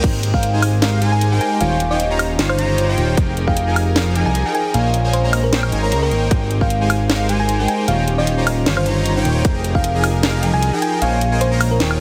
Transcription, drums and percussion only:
0.04 kick loud
0.04 closed hi-hat medium
0.04 crash medium
0.23 closed hi-hat medium
0.34 kick medium
0.43 closed hi-hat medium
0.62 open hi-hat loud
0.62 high woodblock medium
0.82 snare loud
0.82 closed hi-hat medium
1.02 closed hi-hat medium
1.21 closed hi-hat medium
1.41 closed hi-hat medium
1.61 closed hi-hat medium
1.80 closed hi-hat medium
2.00 closed hi-hat medium
2.19 open hi-hat medium
2.19 high woodblock medium
2.39 snare loud
2.39 closed hi-hat medium
2.49 high woodblock medium
2.59 closed hi-hat medium
2.78 closed hi-hat medium
2.98 closed hi-hat medium
3.17 kick loud
3.17 closed hi-hat medium
3.37 closed hi-hat medium
3.48 kick medium
3.57 closed hi-hat medium
3.76 open hi-hat medium
3.76 high woodblock medium
3.96 snare loud
3.96 closed hi-hat medium
4.15 closed hi-hat medium
4.35 closed hi-hat medium
4.55 closed hi-hat medium
4.74 closed hi-hat medium
4.94 closed hi-hat medium
5.13 closed hi-hat medium
5.33 open hi-hat medium
5.33 high woodblock medium
5.53 snare loud
5.53 closed hi-hat medium
5.63 high woodblock medium
5.72 closed hi-hat medium
5.92 closed hi-hat medium
6.11 closed hi-hat medium
6.31 kick loud
6.31 closed hi-hat medium
6.51 closed hi-hat medium
6.61 kick medium
6.70 closed hi-hat medium
6.90 open hi-hat loud
6.90 high woodblock medium
7.10 snare loud
7.10 closed hi-hat medium
7.29 closed hi-hat medium
7.49 closed hi-hat medium
7.68 closed hi-hat medium
7.88 closed hi-hat medium
8.08 closed hi-hat medium
8.27 closed hi-hat medium
8.47 open hi-hat loud
8.47 high woodblock medium
8.66 snare loud
8.66 closed hi-hat medium
8.77 high woodblock medium
8.86 closed hi-hat medium
9.06 closed hi-hat medium
9.25 closed hi-hat medium
9.45 kick loud
9.45 closed hi-hat medium
9.64 closed hi-hat medium
9.75 kick medium
9.84 closed hi-hat medium
10.04 open hi-hat loud
10.04 high woodblock medium
10.23 snare loud
10.23 closed hi-hat medium
10.43 closed hi-hat medium
10.62 closed hi-hat medium
10.82 closed hi-hat medium
11.02 closed hi-hat medium
11.21 closed hi-hat medium
11.41 closed hi-hat medium
11.61 open hi-hat loud
11.61 high woodblock medium
11.80 snare loud
11.80 closed hi-hat medium
11.91 high woodblock medium

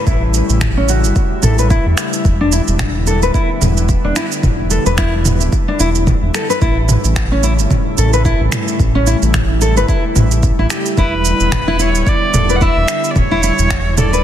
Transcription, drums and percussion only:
0.07 kick loud
0.07 shaker soft
0.34 shaker medium
0.50 shaker soft
0.61 finger snap medium
0.61 kick loud
0.61 mid tom medium
0.61 shaker soft
0.89 shaker medium
1.04 shaker soft
1.16 kick loud
1.16 shaker soft
1.43 mid tom medium
1.43 shaker medium
1.59 shaker soft
1.70 kick loud
1.70 shaker soft
1.98 finger snap medium
1.98 shaker medium
2.13 shaker soft
2.25 kick loud
2.25 shaker soft
2.52 shaker medium
2.68 shaker soft
2.79 finger snap medium
2.79 kick medium
2.79 mid tom medium
2.79 shaker soft
3.07 shaker medium
3.22 shaker soft
3.34 kick loud
3.34 shaker soft
3.62 mid tom medium
3.62 shaker medium
3.77 shaker soft
3.89 kick loud
3.89 shaker soft
4.16 finger snap medium
4.16 shaker medium
4.32 shaker soft
4.43 kick medium
4.43 mid tom medium
4.43 shaker soft
4.71 shaker medium
4.86 shaker soft
4.98 finger snap medium
4.98 kick medium
4.98 shaker soft
5.25 mid tom medium
5.25 shaker medium
5.41 shaker soft
5.53 kick medium
5.53 shaker soft
5.80 shaker medium
5.95 shaker soft
6.07 kick loud
6.07 mid tom medium
6.07 shaker soft
6.34 finger snap medium
6.34 shaker medium
6.50 shaker soft
6.62 kick medium
6.62 shaker soft
6.89 mid tom medium
6.89 shaker medium
7.05 shaker soft
7.16 finger snap medium
7.16 kick medium
7.16 shaker soft
7.43 shaker medium
7.59 shaker soft
7.71 kick medium
7.71 mid tom medium
7.71 shaker soft
7.98 shaker medium
8.13 shaker soft
8.25 kick medium
8.25 shaker soft
8.52 finger snap medium
8.52 mid tom medium
8.52 shaker medium
8.68 shaker soft
8.80 kick medium
8.80 shaker soft
9.07 shaker medium
9.22 shaker soft
9.34 finger snap medium
9.34 kick medium
9.34 mid tom medium
9.34 shaker soft
9.61 shaker medium
9.77 shaker soft
9.89 kick medium
9.89 shaker soft
10.16 mid tom medium
10.16 shaker medium
10.31 shaker soft
10.43 kick loud
10.43 shaker soft
10.70 finger snap medium
10.70 shaker medium
10.86 shaker soft
10.98 kick loud
10.98 shaker soft
11.25 shaker medium
11.40 shaker soft
11.52 finger snap medium
11.52 kick medium
11.52 mid tom medium
11.52 shaker soft
11.80 shaker medium
11.95 shaker soft
12.07 kick loud
12.07 shaker soft
12.34 mid tom medium
12.34 shaker medium
12.50 shaker soft
12.61 kick medium
12.61 shaker soft
12.88 finger snap medium
12.88 shaker medium
13.04 shaker soft
13.16 kick loud
13.16 mid tom medium
13.16 shaker soft
13.43 shaker medium
13.59 shaker soft
13.70 finger snap medium
13.70 kick loud
13.70 shaker soft
13.98 mid tom medium
13.98 shaker medium
14.13 shaker soft

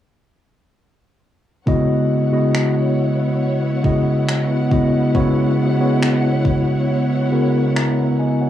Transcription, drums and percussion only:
1.67 kick loud
2.55 finger snap loud
3.84 kick medium
4.29 finger snap loud
4.71 kick medium
5.15 kick loud
6.03 finger snap loud
6.45 kick medium
7.76 finger snap medium

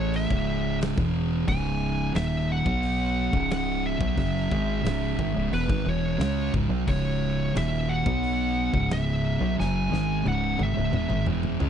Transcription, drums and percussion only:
0.13 open hi-hat medium
0.30 kick loud
0.81 snare loud
0.81 open hi-hat medium
0.98 kick loud
1.48 kick loud
1.48 open hi-hat medium
2.15 snare loud
2.15 open hi-hat medium
2.66 kick loud
2.83 open hi-hat medium
3.33 kick loud
3.50 snare loud
3.50 open hi-hat medium
4.01 kick loud
4.17 kick loud
4.17 open hi-hat medium
4.51 kick loud
4.85 snare loud
4.85 open hi-hat medium
5.19 kick loud
5.53 open hi-hat medium
5.70 kick loud
6.20 snare loud
6.20 open hi-hat medium
6.54 kick loud
6.88 kick loud
6.88 open hi-hat medium
7.55 snare loud
7.55 open hi-hat medium
8.06 kick loud
8.23 open hi-hat medium
8.74 kick loud
8.90 snare loud
8.90 open hi-hat medium
9.60 snare medium
9.93 snare medium
10.26 high tom medium
10.59 high tom medium
10.93 mid tom medium
11.10 mid tom medium
11.26 mid tom medium
11.43 mid tom medium
11.60 mid tom loud

